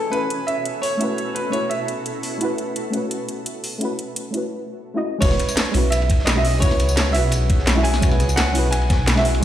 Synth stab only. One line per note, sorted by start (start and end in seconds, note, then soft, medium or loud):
0.00 0.10 A3 medium
0.00 0.11 C#4 medium
0.00 0.11 E4 medium
0.00 0.12 F#4 medium
0.00 0.12 B4 loud
0.10 0.96 A3 medium
0.10 0.97 C#4 medium
0.10 0.99 E4 medium
0.15 0.99 F#4 medium
0.15 1.00 B4 medium
0.97 1.48 A3 medium
0.97 1.50 C#4 medium
0.97 1.51 E4 medium
1.02 1.52 F#4 medium
1.02 1.53 B4 loud
1.50 2.36 A3 medium
1.50 2.38 C#4 medium
1.50 2.39 E4 medium
1.54 2.40 F#4 medium
1.54 2.40 B4 medium
2.38 2.89 A3 medium
2.38 2.91 C#4 medium
2.38 2.92 E4 medium
2.43 2.92 F#4 medium
2.43 2.93 B4 loud
2.90 3.77 A3 medium
2.90 3.78 C#4 medium
2.90 3.79 E4 medium
2.95 3.80 F#4 medium
2.95 3.81 B4 medium
3.78 4.29 A3 medium
3.78 4.31 C#4 medium
3.78 4.32 E4 medium
3.83 4.33 F#4 medium
3.83 4.33 B4 loud
4.31 4.92 A3 medium
4.31 4.93 C#4 medium
4.31 4.94 E4 medium
4.35 4.95 F#4 medium
4.35 4.95 B4 medium
4.94 5.19 A3 loud
4.94 5.19 C#4 medium
4.94 5.20 E4 medium
4.94 5.20 F#4 medium
4.94 5.20 D#5 loud
5.18 5.70 G#3 loud
5.18 5.71 C#4 medium
5.18 5.72 E4 medium
5.23 5.73 F#4 medium
5.23 5.74 B4 loud
5.71 6.33 G#3 medium
5.71 6.33 C#4 medium
5.71 6.34 E4 medium
5.76 6.35 F#4 medium
5.76 6.36 B4 medium
6.34 6.58 G#3 loud
6.34 6.59 C#4 medium
6.34 6.60 E4 medium
6.34 6.60 F#4 medium
6.34 6.61 E5 loud
6.59 7.10 G#3 medium
6.59 7.12 C#4 medium
6.59 7.13 E4 medium
6.64 7.13 F#4 medium
6.64 7.14 B4 loud
7.11 7.73 G#3 medium
7.11 7.74 C#4 medium
7.11 7.74 E4 medium
7.16 7.75 F#4 medium
7.16 7.76 B4 medium
7.75 7.98 G#3 loud
7.75 8.00 C#4 medium
7.75 8.00 E4 medium
7.75 8.01 F#4 medium
7.75 8.01 E5 loud
7.99 8.51 G#3 medium
7.99 8.52 C#4 medium
7.99 8.53 E4 medium
8.04 8.54 F#4 medium
8.04 8.55 B4 loud
8.52 9.13 G#3 medium
8.52 9.14 C#4 medium
8.52 9.15 E4 medium
8.57 9.16 F#4 medium
8.57 9.17 B4 medium
9.15 9.38 G#3 loud
9.15 9.40 C#4 medium
9.15 9.41 E4 medium
9.15 9.41 F#4 medium
9.15 9.41 E5 loud
9.40 9.45 G#3 loud
9.40 9.45 C#4 medium